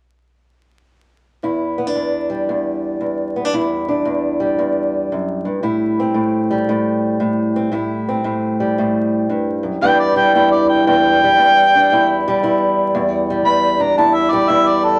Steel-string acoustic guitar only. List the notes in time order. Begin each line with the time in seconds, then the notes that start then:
1.43 E2 E4
1.78 B3
1.87 D4
1.95 E2
2.30 G3
2.49 E2
3.01 E2
3.36 B3
3.45 D4
3.53 E2 E4
3.88 D4
4.05 E2
4.40 G3
4.59 E2
5.12 F#2
5.45 G2
5.63 A2 E4
6.00 C4
6.14 A2
6.51 G3
6.69 A2
7.20 A2
7.56 C4
7.72 A2 E4
8.09 C4
8.24 A2
8.60 G3
8.78 A2
9.30 G2
9.63 F#2
9.81 E2 E3 G3 D4 E4
10.16 G3
10.35 E2 E4
10.87 E2
11.24 G3
11.38 E2
11.75 D4
11.92 E2 E4
12.28 G3
12.43 E2 E4
12.95 E2
13.30 G3
13.45 E2
13.80 D4
13.98 E2 E4
14.33 G3
14.49 E2 E4